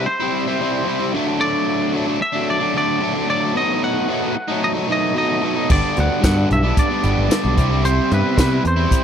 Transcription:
0.06 clean electric guitar C5, muted overdriven electric guitar stroke
0.20 overdriven electric guitar G3 C4 E4
0.46 overdriven electric guitar G3 C4 E4
0.60 overdriven electric guitar C3 G3 C4 E4
0.85 overdriven electric guitar C3 G3 C4 E4
0.99 overdriven electric guitar G3 C4 E4
1.14 overdriven electric guitar D3 F#3 A3 D4
1.26 overdriven electric guitar F#3 A3 D4
1.40 overdriven electric guitar D3 F#3 A3 D4, clean electric guitar D5
1.93 overdriven electric guitar D3 F#3 A3 D4
2.05 overdriven electric guitar F#3 A3 D4
2.20 clean electric guitar E5, muted overdriven electric guitar stroke
2.32 overdriven electric guitar F#3 A3 D4
2.50 clean electric guitar D5
2.59 overdriven electric guitar F#3 A3 D4
2.73 overdriven electric guitar D3 F#3 A3 D4
2.78 clean electric guitar D5
3.00 overdriven electric guitar D3 F#3 A3 D4
3.14 overdriven electric guitar F#3 A3 D4
3.27 overdriven electric guitar D3 F#3 A3 D4, clean electric guitar D5
3.41 overdriven electric guitar F#3 A3 D4
3.54 overdriven electric guitar B2 F#3 A3 D#4, clean electric guitar D#5
3.84 clean electric guitar F#5
4.08 overdriven electric guitar B2 F#3 A3 D#4
4.21 overdriven electric guitar F#3 A3 D#4
4.36 muted overdriven electric guitar stroke
4.48 overdriven electric guitar F#3 A3 D#4
4.64 tine electric piano D#4, clean electric guitar D#5
4.74 overdriven electric guitar F#3 A3 D#4
4.88 overdriven electric guitar B2 F#3 A3 D#4, tine electric piano D#4
4.92 clean electric guitar D#5
5.14 overdriven electric guitar B2 F#3 A3 D#4, tine electric piano D#4, clean electric guitar D#5
5.29 overdriven electric guitar F#3 A3 D#4
5.42 overdriven electric guitar B2 F#3 A3 D#4
5.55 overdriven electric guitar F#3 A3 D#4
5.68 picked electric bass G1, overdriven electric guitar G2 D3 G3 B3 D4, tine electric piano D4, clean electric guitar D5, kick, crash
5.97 picked electric bass D2, tine electric piano F#4, clean electric guitar F#5, closed hi-hat
6.21 overdriven electric guitar G2 D3 G3 B3 D4, picked electric bass G2, tine electric piano F#4, clean electric guitar F#5, kick, snare, closed hi-hat, tambourine
6.35 overdriven electric guitar G3 B3 D4
6.50 picked electric bass B1, tine electric piano E4, clean electric guitar E5, muted overdriven electric guitar stroke, closed hi-hat
6.63 overdriven electric guitar G3 B3 D4
6.77 tine electric piano D4, clean electric guitar D5, kick, closed hi-hat
6.90 overdriven electric guitar G3 B3 D4
7.03 picked electric bass G1, overdriven electric guitar D3 G3 B3 D4, closed hi-hat
7.18 picked electric bass G1
7.28 overdriven electric guitar G2 D3 G3 B3 D4, snare, closed hi-hat, tambourine
7.43 picked electric bass B1, overdriven electric guitar G3 B3 D4
7.56 picked electric bass C2, overdriven electric guitar C3 G3 C4 E4, kick, closed hi-hat
7.70 overdriven electric guitar G3 C4 E4
7.83 overdriven electric guitar C3 G3 C4 E4, tine electric piano C4, clean electric guitar C5, closed hi-hat
8.12 picked electric bass G2, tine electric piano B3, clean electric guitar B4, closed hi-hat
8.36 overdriven electric guitar C3 G3 C4 E4, picked electric bass C3, tine electric piano B3, kick, snare, closed hi-hat, tambourine
8.40 clean electric guitar B4
8.50 overdriven electric guitar G3 C4 E4
8.65 picked electric bass E2, tine electric piano C4, clean electric guitar C5, muted overdriven electric guitar stroke, closed hi-hat
8.76 overdriven electric guitar G3 C4 E4
8.91 kick, closed hi-hat

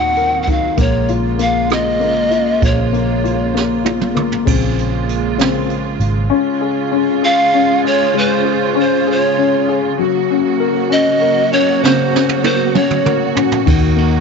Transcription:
Already playing: fingered electric bass D#2, upright piano A#2 D#4 F#4 A#4, string section D#3 F#3 C4 F#4, pan flute F#5
0.16 upright piano A#4, closed hi-hat
0.43 pan flute F#5
0.47 upright piano D#4, kick, closed hi-hat
0.51 pan flute F5
0.77 fingered electric bass A#1, string section C#3 G#3 A#3 F4, upright piano A#3, pan flute C#5, kick, closed hi-hat
1.08 upright piano F4, closed hi-hat
1.39 upright piano A#3, pan flute F5, closed hi-hat
1.70 upright piano F4, pan flute D#5, cross-stick, closed hi-hat
2.00 upright piano A#3, closed hi-hat
2.31 upright piano F4, closed hi-hat
2.62 fingered electric bass A#1, upright piano F3, pan flute C#5, kick, closed hi-hat
2.93 upright piano A#3, closed hi-hat
3.24 upright piano F4, closed hi-hat
3.54 upright piano A#3, snare
3.85 upright piano F4, high tom
4.01 mid tom
4.15 upright piano A#3, mid tom
4.32 floor tom
4.45 fingered electric bass A#1, upright piano C#3 G#3 C4, string section C#3 G#3 A#3 F4, kick, crash
4.79 closed hi-hat
5.09 closed hi-hat
5.37 upright piano C#3 G#3 C4, snare, closed hi-hat
5.70 closed hi-hat
6.00 fingered electric bass G#1, closed hi-hat
6.30 string section C#3 G#3 C#4 F4, upright piano C#4
6.61 upright piano G#4
6.91 upright piano C#4
7.22 upright piano G#4, pan flute F5
7.54 upright piano C#4
7.85 upright piano G#4, pan flute C#5
8.14 upright piano G#3
8.18 pan flute C5
8.45 upright piano G#4
8.75 upright piano C#4
8.80 pan flute C5
9.07 upright piano G#4
9.12 pan flute C#5
9.37 upright piano C#4
9.69 upright piano G#4
9.99 upright piano F#3, string section F#3 A#3 F#4
10.30 upright piano C#4
10.60 upright piano A#4
10.90 upright piano C#4, pan flute D#5
11.21 upright piano A#4
11.52 upright piano C#4, pan flute C#5
11.83 upright piano C#3, pan flute C5, snare
12.14 upright piano C#4, snare
12.29 high tom
12.43 upright piano A#4, pan flute C5, high tom
12.74 upright piano C#4, pan flute C#5, mid tom
12.91 mid tom
13.05 upright piano A#4, mid tom
13.35 upright piano C#4, floor tom
13.52 floor tom
13.66 fingered electric bass D#2, upright piano D#3, string section D#3 F#3 A#3, kick, ride
13.96 upright piano A#3, ride

